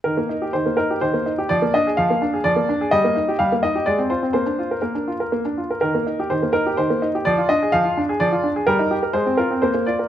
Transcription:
\new Staff \with { instrumentName = "Grand piano" } { \time 3/4 \key ees \major \tempo 4 = 125 << { bes'4 c''8 bes'8 c''4 | d''8 ees''8 f''4 d''4 | ees''4 f''8 ees''8 d''8 c''8 | c''4 bes'4 r4 |
bes'4 c''8 bes'8 c''4 | d''8 ees''8 f''4 d''4 | bes'4 c''8 bes'8 c''8 d''8 | } \\ { ees16 bes16 ees'16 g'16 ees16 bes16 ees'16 g'16 ees16 bes16 ees'16 g'16 | f16 bes16 d'16 aes'16 f16 bes16 d'16 aes'16 f16 bes16 d'16 aes'16 | g16 bes16 ees'16 g'16 g16 bes16 ees'16 g'16 aes16 c'16 f'16 c'16 | bes16 d'16 f'16 bes'16 bes16 d'16 f'16 bes'16 bes16 d'16 f'16 bes'16 |
ees16 bes16 ees'16 g'16 ees16 bes16 ees'16 g'16 ees16 bes16 ees'16 g'16 | f16 f'16 d'16 aes'16 f16 f'16 d'16 aes'16 f16 f'16 d'16 aes'16 | g16 ees'16 g'16 bes'16 aes16 c'16 f'16 c'16 bes16 bes16 f'16 bes'16 | } >> }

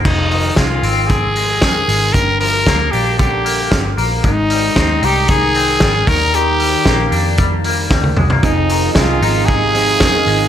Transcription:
<<
  \new Staff \with { instrumentName = "Trumpet" } { \time 4/4 \key f \dorian \tempo 4 = 114 ees'4 f'4 aes'2 | bes'8 bes'4 g'8 g'4. r8 | ees'4. g'8 aes'4. bes'8 | g'2 r2 |
ees'4 f'4 aes'2 | }
  \new Staff \with { instrumentName = "Transistor combo organ" } { \time 4/4 \key f \dorian r1 | r1 | r1 | r1 |
<ees' f' aes'>1 | }
  \new Staff \with { instrumentName = "Clean electric guitar" } { \time 4/4 \key f \dorian r1 | r1 | r1 | r1 |
<f c' ees' aes'>8. <c' ees' aes'>8. <f c' ees' aes'>4 <f c' ees' aes'>8 <f c' ees' aes'>4 | }
  \new Staff \with { instrumentName = "Clean electric guitar" } { \clef bass \time 4/4 \key f \dorian f,8 ees8 aes8 c'8 c8 aes8 ees8 aes8 | g,8 f8 bes8 d'8 d8 bes8 f8 bes8 | aes,8 g8 c'8 ees'8 ees8 c'8 g8 ees8 | ees8 g8 bes8 d'8 g8 bes8 g8 aes16 bes16 |
f,8 ees8 aes8 ees'8 c8 aes8 ees8 aes8 | }
  \new Staff \with { instrumentName = "Picked electric bass" } { \clef bass \time 4/4 \key f \dorian f,,4 c,8 aes,,4. f,,8 aes,,8 | g,,4 d,8 bes,,4. g,,8 bes,,8 | aes,,4 ees,8 c,4. aes,,8 ees,8~ | ees,4 bes,,8 f,4. ees,8 c,8 |
f,,4 c,8 aes,,4. f,,8 aes,,8 | }
  \new DrumStaff \with { instrumentName = "Drums" } \drummode { \time 4/4 <cymc bd>8 hho8 <hh bd sn>8 hho8 <hh bd>8 hho8 <hh bd sn>8 hho8 | <hh bd>8 hho8 <hh bd sn>8 hho8 <hh bd>8 hho8 <hh bd sn>8 hho8 | <hh bd>8 hho8 <hh bd sn>8 hho8 <hh bd>8 hho8 <hh bd sn>8 <hho bd>8 | hh8 hho8 <hh bd sn>8 hho8 <hh bd>8 hho8 <bd sn>16 tommh16 toml16 tomfh16 |
<hh bd>8 hho8 <hh bd sn>8 hho8 <hh bd>8 hho8 <hh bd sn>8 hho8 | }
>>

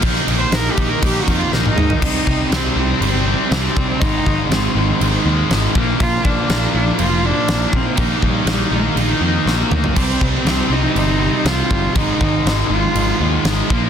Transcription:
<<
  \new Staff \with { instrumentName = "Cello" } { \time 4/4 \key c \minor \tempo 4 = 121 \tuplet 3/2 { r4 c''8 bes'8 g'8 bes'8 g'8 fis'8 f'8 ees'8 ees'4 } | ees'4 c'2 c'4 | ees'4 c'2~ c'8 r8 | f'8 d'4 d'8 f'8 d'4 c'8 |
bes8 g8 g8 bes8 ees'4 bes4 | c'8. c'8. ees'8 ees'4 f'4 | ees'4. f'4. r4 | }
  \new Staff \with { instrumentName = "Distorted electric guitar" } { \clef bass \time 4/4 \key c \minor <ees bes ees'>8 <ees bes ees'>8 <ees bes ees'>8 <ees bes ees'>8 <ees bes ees'>8 <ees bes ees'>8 <ees bes ees'>8 <ees bes ees'>8 | <c g c'>8 <c g c'>8 <c g c'>8 <c g c'>8 <c g c'>8 <c g c'>8 <c g c'>8 <c g c'>8 | <aes, ees aes>8 <aes, ees aes>8 <aes, ees aes>8 <aes, ees aes>8 <aes, ees aes>8 <aes, ees aes>8 <aes, ees aes>8 <bes, f bes>8 | <bes, f bes>8 <bes, f bes>8 <bes, f bes>8 <bes, f bes>8 <bes, f bes>8 <bes, f bes>8 <bes, f bes>8 <bes, f bes>8 |
<ees bes ees'>8 <ees bes ees'>8 <ees bes ees'>8 <ees bes ees'>8 <ees bes ees'>8 <ees bes ees'>8 <ees bes ees'>8 <ees bes ees'>8 | <c g c'>8 <c g c'>8 <c g c'>8 <c g c'>8 <c g c'>8 <c g c'>8 <c g c'>8 <c g c'>8 | <aes, ees aes>8 <aes, ees aes>8 <aes, ees aes>8 <aes, ees aes>8 <aes, ees aes>8 <aes, ees aes>8 <aes, ees aes>8 <bes, f bes>8 | }
  \new Staff \with { instrumentName = "Distorted electric guitar" } { \clef bass \time 4/4 \key c \minor <ees bes ees'>4. <ees bes ees'>2~ <ees bes ees'>8 | <c g c'>4. <c g c'>2~ <c g c'>8 | <aes, ees aes>4. <aes, ees aes>2 <bes, f bes>8~ | <bes, f bes>4 <bes, f bes>2~ <bes, f bes>8 r8 |
<ees bes ees'>4. <ees bes ees'>2~ <ees bes ees'>8 | <c g c'>4. <c g c'>2~ <c g c'>8 | <aes, ees aes>4. <aes, ees aes>2 <bes, f bes>8 | }
  \new Staff \with { instrumentName = "Overdriven electric guitar" } { \clef bass \time 4/4 \key c \minor <ees bes ees'>8 <ees bes ees'>8 <ees bes ees'>8 <ees bes ees'>8 <ees bes ees'>8 <ees bes ees'>8 <ees bes ees'>8 <ees bes ees'>8 | <c g c'>8 <c g c'>8 <c g c'>8 <c g c'>8 <c g c'>8 <c g c'>8 <c g c'>8 <c g c'>8 | <aes, ees aes>8 <aes, ees aes>8 <aes, ees aes>8 <aes, ees aes>8 <aes, ees aes>8 <aes, ees aes>8 <aes, ees aes>8 <bes, f bes>8 | <bes, f bes>8 <bes, f bes>8 <bes, f bes>8 <bes, f bes>8 <bes, f bes>8 <bes, f bes>8 <bes, f bes>8 <bes, f bes>8 |
<ees bes ees'>8 <ees bes ees'>8 <ees bes ees'>8 <ees bes ees'>8 <ees bes ees'>8 <ees bes ees'>8 <ees bes ees'>8 <ees bes ees'>8 | <c g c'>8 <c g c'>8 <c g c'>8 <c g c'>8 <c g c'>8 <c g c'>8 <c g c'>8 <c g c'>8 | <aes, ees aes>8 <aes, ees aes>8 <aes, ees aes>8 <aes, ees aes>8 <aes, ees aes>8 <aes, ees aes>8 <aes, ees aes>8 <bes, f bes>8 | }
  \new Staff \with { instrumentName = "Picked electric bass" } { \clef bass \time 4/4 \key c \minor bes,,8 bes,,8 bes,,8 bes,,8 bes,,8 f,8 bes,,8 aes,8 | c,8 c,8 c,8 c,8 g,,4 c,8 c,8 | aes,,8 aes,,8 aes,,8 aes,,8 aes,,8 ees,8 aes,,8 bes,,8 | bes,,8 bes,,8 bes,,8 bes,,8 f,,4 bes,,8 bes,,8 |
bes,,8 bes,,8 bes,,8 bes,,8 bes,,8 f,8 bes,,8 d,8 | c,8 c,8 c,8 c,8 g,,4 c,8 g,,8 | aes,,8 aes,,8 aes,,8 aes,,8 aes,,8 ees,8 aes,,8 bes,,8 | }
  \new DrumStaff \with { instrumentName = "Drums" } \drummode { \time 4/4 <cymc bd>16 sn16 cymc8 <cymc sn>8 <cymc bd>8 <cymc bd>8 <cymc bd>8 sn16 tommh16 toml16 tomfh16 | <cymc bd>8 bd8 <cymc sn>4 cymc4 <cymc sn>8 bd8 | <cymc bd>8 bd8 <cymc sn>4 cymc4 <cymc sn>8 bd8 | <cymc bd>8 bd8 <cymc sn>4 cymc4 <cymc sn>8 bd8 |
<cymc bd>8 bd8 <cymc sn>4 cymc4 sn8 toml16 tomfh16 | <cymc bd>8 bd8 <cymc sn>4 cymc4 <cymc sn>8 bd8 | <cymc bd>8 bd8 <cymc sn>4 cymc4 <cymc sn>8 bd8 | }
>>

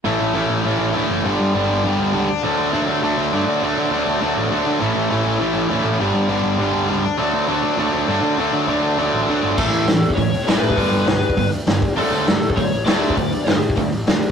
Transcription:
<<
  \new Staff \with { instrumentName = "Lead electric guitar" } { \time 4/4 \key d \major \tempo 4 = 201 r1 | r1 | r1 | r1 |
r1 | r1 | r1 | r1 |
a'2 cis''4 cis''8 b'8~ | b'2~ b'8 r4. | a'2 cis''4 d''8 d''8~ | d''4. r2 r8 | }
  \new Staff \with { instrumentName = "Distorted electric guitar" } { \clef bass \time 4/4 \key d \major <a, e a cis' e'>4 <a, e a cis' e'>4 <a, e a cis' e'>4 <a, e a cis' e'>4 | <g, d g b d'>4 <g, d g b d'>4 <g, d g b d'>4 <g, d g b d'>8 r8 | <d fis a d'>4 <d fis a d'>4 <d fis a d'>4 <d fis a d'>4 | <d fis a d'>4 <d fis a d'>4 <d fis a d'>4 <d fis a d'>4 |
<a, e a cis' e'>4 <a, e a cis' e'>4 <a, e a cis' e'>4 <a, e a cis' e'>4 | <g, d g b d'>4 <g, d g b d'>4 <g, d g b d'>4 <g, d g b d'>8 r8 | <d fis a d'>4 <d fis a d'>4 <d fis a d'>4 <d fis a d'>4 | <d fis a d'>4 <d fis a d'>4 <d fis a d'>4 <d fis a d'>4 |
<a, e a>4 <a, e>8 r8 <a, e>8 r8 <a, e a>4 | <g, d g>4 <g, d>8 r8 <g, d>8 r8 <g, d>8 r8 | <d fis a>4 <d fis>8 r8 <d fis>8 r8 <d fis a>4 | <d fis>8 r8 <d fis>8 r8 <d fis>8 r8 <d fis>8 r8 | }
  \new Staff \with { instrumentName = "Overdriven electric guitar" } { \clef bass \time 4/4 \key d \major <a, e a>4 <a, e a>4 <a, e a>4 <a, e a>4 | <g, d g>4 <g, d g>4 <g, d g>4 <g, d g>8 r8 | <d a d'>4 <d a d'>4 <d a d'>4 <d a d'>4 | <d a d'>4 <d a d'>4 <d a d'>4 <d a d'>4 |
<a, e a>4 <a, e a>4 <a, e a>4 <a, e a>4 | <g, d g>4 <g, d g>4 <g, d g>4 <g, d g>8 r8 | <d a d'>4 <d a d'>4 <d a d'>4 <d a d'>4 | <d a d'>4 <d a d'>4 <d a d'>4 <d a d'>4 |
<a, e a>4 <a, e>8 r8 <a, e>8 r8 <a, e a>4 | <g, d g>4 <g, d>8 r8 <g, d>8 r8 <g, d>8 r8 | <d a d'>4 <d a>8 r8 <d a>8 r8 <d a d'>4 | <d a>8 r8 <d a>8 r8 <d a>8 r8 <d a>8 r8 | }
  \new Staff \with { instrumentName = "Picked electric bass" } { \clef bass \time 4/4 \key d \major a,,8 a,,8 a,,8 a,,8 a,,8 a,,8 d,8 fis,,8 | g,,8 g,8 g,,8 g,,8 g,,8 d,8 cis,8 d,8 | d,8 d,8 d,8 d,8 d,8 d,8 g,8 d8 | d,8 d8 d,8 d,8 d,8 a,,8 d,8 d8 |
a,,8 a,,8 a,,8 a,,8 a,,8 a,,8 d,8 a,8 | g,,8 g,8 g,,8 g,,8 g,,8 d,8 cis,8 d,8 | d,8 d,8 d,8 d,8 d,8 d,8 g,8 d8 | d,8 d8 d,8 d,8 d,8 a,,8 d,8 g,,8 |
a,,8 a,,8 d,8 e,8 a,,8 e,,8 a,,8 a,,8 | g,,8 g,,8 b,,8 d,8 g,,8 d,8 g,,8 d,8 | d,8 d,8 g,8 a,8 d,8 a,,8 d,8 d,8 | d,8 d,8 g,8 a,8 d,8 a,,8 d,8 d,8 | }
  \new DrumStaff \with { instrumentName = "Drums" } \drummode { \time 4/4 r4 r4 r4 r4 | r4 r4 r4 r4 | r4 r4 r4 r4 | r4 r4 r4 r4 |
r4 r4 r4 r4 | r4 r4 r4 r4 | r4 r4 r4 r4 | r4 r4 r4 r4 |
<cymc bd>8 hho8 <hho sn>8 hho16 bd16 <hho bd>8 hho8 <hho sn>8 hho16 bd16 | <hho bd>8 hho8 <hho sn>8 hho16 bd16 <hho bd>8 hho8 <hho sn>8 <hho bd>8 | hho8 hho8 <hho sn>8 hho16 bd16 <hho bd>8 hho8 <hho sn>8 hho16 bd16 | <hho bd>8 hho8 <hho sn>8 hho16 bd16 <hho bd>8 hho8 <hho sn>8 hho8 | }
>>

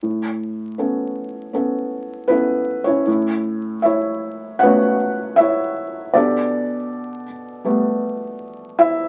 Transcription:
<<
  \new Staff \with { instrumentName = "Felt piano" } { \time 4/4 \key a \major \tempo 4 = 79 r2. <b e' b'>8. <cis' e' cis''>16~ | <cis' e' cis''>4 <e' cis'' e''>4 <fis' b' cis'' fis''>4 <e' cis'' e''>4 | <d' g' a' d''>4. r2 <e' e''>8 | }
  \new Staff \with { instrumentName = "Felt piano" } { \time 4/4 \key a \major a,4 <b cis' a'>4 <b cis' a'>4 <cis' a'>4 | a,2 <a b cis'>2 | b,2 <g a b>2 | }
>>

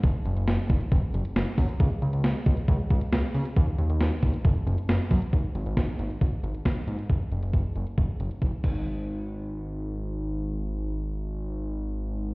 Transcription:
<<
  \new Staff \with { instrumentName = "Analog synth bass" } { \clef bass \time 4/4 \key fis \mixolydian \tempo 4 = 136 fis,,16 r16 fis,,16 fis,,16 fis,,16 r16 fis,,16 r16 fis,,16 r16 fis,,16 r16 fis,,16 r16 fis,16 r16 | cis,16 r16 cis,16 cis,16 cis,16 r16 cis,16 r16 cis,16 r16 cis,16 r16 cis,16 r16 cis16 r16 | dis,16 r16 dis,16 dis,16 dis,16 r16 dis,16 r16 fis,,16 r16 fis,,16 r16 fis,,16 r16 fis,16 r16 | gis,,16 r16 gis,,16 gis,,16 gis,,16 r16 gis,,16 r16 gis,,16 r16 gis,,16 r16 gis,,16 r16 gis,16 r16 |
fis,,16 r16 fis,,16 fis,,16 fis,,16 r16 fis,,16 r16 fis,,16 r16 fis,,16 r16 fis,,16 r16 gis,,8~ | gis,,1~ | gis,,1 | }
  \new DrumStaff \with { instrumentName = "Drums" } \drummode { \time 4/4 <hh bd>8 hh16 hh16 <hh sn>8 <hh bd>16 hh16 <hh bd>8 hh16 hh16 <hh sn>8 <hho bd>16 hh16 | <hh bd>8 hh16 hh16 <hh sn>8 <hh bd>16 hh16 <hh bd>8 <hh bd>16 hh16 <hh sn>8 hho16 hh16 | <hh bd>8 hh16 hh16 <hh sn>8 <hho bd>16 hh16 <hh bd>8 hh16 hh16 <hh sn>8 <hho bd>16 hh16 | <hh bd>8 hh16 hh16 <hh bd sn>8 hh16 hh16 <hh bd>8 hh16 hh16 <hh bd sn>8 hh16 hh16 |
<hh bd>8 hh16 hh16 <hh bd>8 hh16 hh16 <hh bd>8 hh16 hh16 <hh bd>8 <cymc bd>8 | r4 r4 r4 r4 | r4 r4 r4 r4 | }
>>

